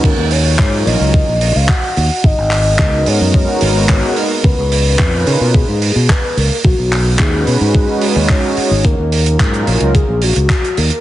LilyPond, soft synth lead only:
\new Staff \with { instrumentName = "Soft synth lead" } { \time 4/4 \key ees \minor \tempo 4 = 109 bes'8 des''4 ees''4~ ees''16 f''16 ges''4 | ees''4. des''8 des''4. bes'8 | ces''4. bes'8 aes'4 ces''8 bes'8 | fis'4 gis'2 cis''4 |
bes'2 aes'8 ges'4 bes'8 | }